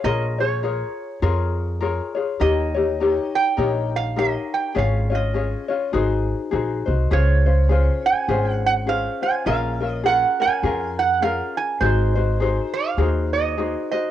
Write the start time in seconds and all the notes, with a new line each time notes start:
0.04 A#1 F4 G#4 A#4 C#5 D#5
0.38 F4 G#4 C#5
0.63 F4 G#4 A#4 C#5
1.22 F2 F4 G#4 A#4 C#5
1.81 F4 G#4 A#4 C#5
2.15 F4 G#4 C#5
2.40 D#2 D#4 G4 A#4 C#5 D#5
2.74 D#4 G4 C#5
3.00 D#4 G4 A#4 C#5
3.35 G5
3.57 A#1 D#4 G4 A#4 C#5
3.96 F5
4.17 D#4 G4 A#4 C#5 D#5
4.54 G5
4.75 G#1 C#4 F4 G#4 C#5 F5
5.10 C#4 F4 C#5
5.15 D#5
5.34 C#4 F4 G#4 C#5
5.68 C#4 F4 C#5
5.93 G#1 D#4 F#4 G#4 C5
6.51 A#1 D#4 F#4 G#4 C5
6.86 C2 D#4 F#4 C5
7.11 C#2 C#4 F4 G#4 C5 C#5
7.46 C#4 F4 C5
7.69 C#4 F4 G#4 C5
8.06 G#5
8.28 G#1 C#4 F4 G#4 C5
8.53 F#5
8.66 F#5
8.87 C#4 F4 G#4 C5 F5
9.22 C#4 F4 C5 G#5
9.46 A#1 C#4 F4 G#4 A#4 F5
9.80 C#4 F4 A#4
9.89 D#5
10.03 C#4 F4 G#4 A#4 F#5
10.40 C#4 F4 A#4 G#5
10.63 F2 C#4 F4 G#4 A#4
10.99 F#5
11.22 C#4 F4 G#4 A#4 F5
11.57 G#5
11.80 G#1 D#4 F#4 G#4 C5
12.15 D#4 F#4 C5
12.40 D#4 F#4 G#4 C5
12.74 F5
12.97 D#2 D#4 F#4 G#4 C5
13.33 D#5
13.58 D#4 F#4 G#4 C5
13.91 D#4 F#4 C5 D#5